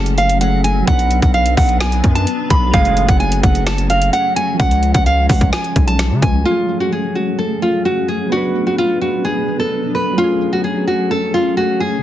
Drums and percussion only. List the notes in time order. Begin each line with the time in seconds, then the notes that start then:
0.06 closed hi-hat
0.18 closed hi-hat
0.29 closed hi-hat
0.41 closed hi-hat
0.64 closed hi-hat
0.87 kick, closed hi-hat
0.99 closed hi-hat
1.11 closed hi-hat
1.22 kick, closed hi-hat
1.34 closed hi-hat
1.46 closed hi-hat
1.57 kick, open hi-hat
1.69 closed hi-hat
1.81 snare, closed hi-hat
1.92 closed hi-hat
2.04 kick, closed hi-hat
2.15 closed hi-hat
2.27 closed hi-hat
2.50 kick, closed hi-hat
2.74 kick, closed hi-hat
2.85 closed hi-hat
2.97 closed hi-hat
3.09 kick, closed hi-hat
3.20 closed hi-hat
3.32 closed hi-hat
3.43 kick, closed hi-hat
3.55 closed hi-hat
3.67 snare, closed hi-hat
3.78 closed hi-hat
3.90 closed hi-hat
4.02 closed hi-hat
4.13 closed hi-hat
4.37 closed hi-hat
4.60 kick, closed hi-hat
4.71 closed hi-hat
4.83 closed hi-hat
4.94 kick, closed hi-hat
5.06 closed hi-hat
5.30 kick, open hi-hat
5.41 kick, closed hi-hat
5.53 snare, closed hi-hat
5.64 closed hi-hat
5.76 kick, closed hi-hat
5.88 closed hi-hat
5.99 snare, closed hi-hat
6.22 kick, closed hi-hat